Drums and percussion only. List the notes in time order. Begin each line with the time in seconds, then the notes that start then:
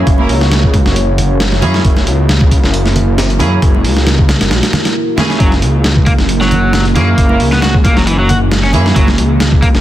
0.07 kick, closed hi-hat
0.18 high conga
0.29 open hi-hat
0.41 snare
0.52 snare, closed hi-hat
0.63 kick
0.74 kick, closed hi-hat, high conga
0.86 snare
0.96 closed hi-hat
1.18 closed hi-hat, low conga
1.40 snare, closed hi-hat
1.52 snare
1.62 closed hi-hat, low conga
1.74 snare
1.85 kick, closed hi-hat
1.96 snare, high conga
2.07 closed hi-hat
2.29 snare, closed hi-hat
2.41 kick
2.51 kick, closed hi-hat
2.64 snare
2.74 closed hi-hat
2.86 snare
2.96 closed hi-hat, low conga
3.18 snare, closed hi-hat
3.30 closed hi-hat
3.39 closed hi-hat, low conga
3.62 kick, closed hi-hat
3.74 high conga
3.85 open hi-hat
3.97 snare
4.07 snare, closed hi-hat
4.19 kick
4.29 snare, closed hi-hat, high conga
4.41 snare, closed hi-hat
4.51 snare, closed hi-hat
4.63 snare, closed hi-hat
4.73 snare, closed hi-hat, low conga
4.85 snare, closed hi-hat
5.17 snare, closed hi-hat, low conga
5.30 snare
5.40 kick, closed hi-hat
5.51 snare, high conga
5.62 closed hi-hat
5.84 snare, closed hi-hat
5.96 kick
6.06 kick, closed hi-hat
6.18 snare
6.29 closed hi-hat
6.41 snare
6.51 closed hi-hat, low conga
6.73 snare, closed hi-hat
6.85 closed hi-hat
6.96 closed hi-hat, low conga
7.18 kick, closed hi-hat
7.29 high conga
7.40 open hi-hat
7.52 snare
7.62 snare, closed hi-hat
7.74 kick
7.85 kick, closed hi-hat, high conga
7.97 snare
8.07 closed hi-hat
8.29 closed hi-hat, low conga
8.52 snare, closed hi-hat
8.64 snare
8.73 closed hi-hat, low conga
8.86 snare
8.96 kick, closed hi-hat
9.07 snare, high conga
9.18 closed hi-hat
9.40 snare, closed hi-hat
9.52 kick
9.62 kick, closed hi-hat
9.75 snare